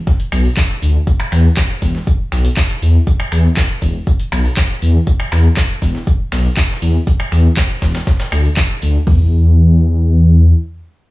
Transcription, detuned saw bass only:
0.32 B1
0.82 D2
1.32 E2
1.82 E1
2.32 B1
2.82 E2
3.32 E2
3.82 E1
4.32 B1
4.82 E2
5.32 E2
5.82 E1
6.32 B1
6.82 E2
7.32 E2
7.82 E1
8.32 D2
8.82 D2
9.07 E2

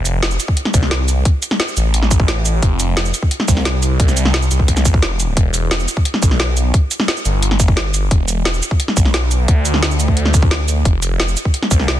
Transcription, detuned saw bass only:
Already playing: F1
0.74 C2
1.77 A1
2.63 F1
3.48 C2
4.00 C2
4.51 C2
5.02 F1
5.37 E1
6.23 B1
7.25 G1
8.11 E1
8.97 B1
9.48 D2
10.85 F1
11.71 C2

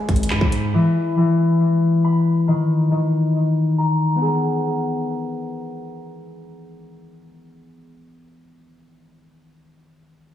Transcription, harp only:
Already playing: G#3 B5
0.30 B5
0.74 E3
1.17 E3
2.04 B5
2.48 D#3
2.91 D#3
3.78 A#5
4.16 B3
4.22 G#4
4.28 A#4

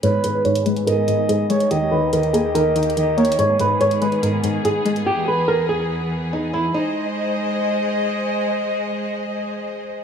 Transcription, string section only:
0.03 G#2 D#3 B3 G#4
1.71 D#2 D#3 A#3 G4
3.39 G#2 B3 G#4
5.06 E2 E3
6.74 G#3 G#4 C5 D#5

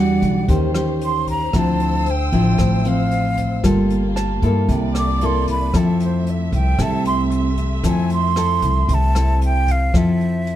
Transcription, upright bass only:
Already playing: E2
0.22 B1
0.48 D#2
1.54 D2
2.32 A1
2.59 A1
3.64 G1
4.42 G2
4.69 C2
5.74 F2
6.52 C2
6.79 C2
7.84 F2
8.62 C2
8.89 C2
9.94 F2

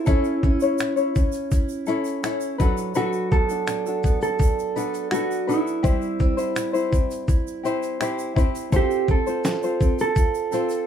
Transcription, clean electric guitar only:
Already playing: E4
2.97 F#4
3.32 A4
4.23 A4
5.12 F#4
5.49 E4
8.76 G4
9.11 A4
10.01 A4

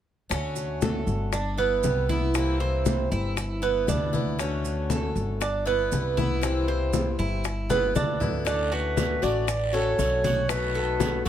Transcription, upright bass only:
0.30 D2
1.07 G1
1.83 C2
3.11 G1
3.88 D2
5.15 G1
5.92 C2
7.19 G1
7.95 D2
9.22 A1
9.98 B1
11.25 D#2

